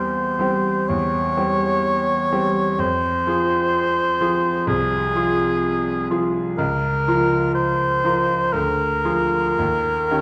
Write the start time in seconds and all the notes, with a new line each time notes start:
Already playing: E2 G3 C4 G4 C5
0.39 G3 C4 G4
0.88 E2 C#5
1.37 G3 C4 G4
2.32 G3 C4 G4
2.78 F2 C5
3.27 F3 F4 G#4
4.21 F3 F4 G#4
4.67 C2 G#4
5.15 F3 F4 G#4
6.11 F3 F4 G#4
6.58 C#2 A#4
7.08 F3 F4 A#4
7.55 C5
8.04 F3 F4 A#4
8.53 D2 A#4
9.05 F3 F4 G#4
9.59 D#2
10.11 D#3 C#4 G4